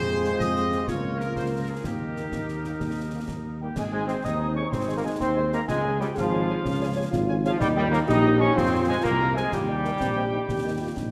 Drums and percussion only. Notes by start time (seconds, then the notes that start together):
0.24 snare
0.40 concert bass drum, snare
0.56 snare
0.72 snare
0.88 concert bass drum, snare
1.20 snare
1.36 concert bass drum, snare
1.84 concert bass drum, snare
2.16 snare
2.32 concert bass drum, snare
2.48 snare
2.64 snare
2.80 concert bass drum, snare
3.28 concert bass drum, snare
3.76 concert bass drum, snare, crash
4.08 snare
4.25 concert bass drum, snare
4.72 concert bass drum, snare
5.21 concert bass drum, snare
5.53 snare
5.69 concert bass drum, snare, crash
6.01 snare
6.17 concert bass drum, snare
6.65 concert bass drum, snare
7.13 concert bass drum, snare
7.45 snare
7.61 concert bass drum, snare, crash
7.93 snare
8.09 concert bass drum, snare
8.58 concert bass drum, snare
9.04 concert bass drum, snare
9.37 snare
9.52 concert bass drum, snare, crash
9.85 snare
10.01 concert bass drum, snare
10.49 concert bass drum, snare
10.97 concert bass drum, snare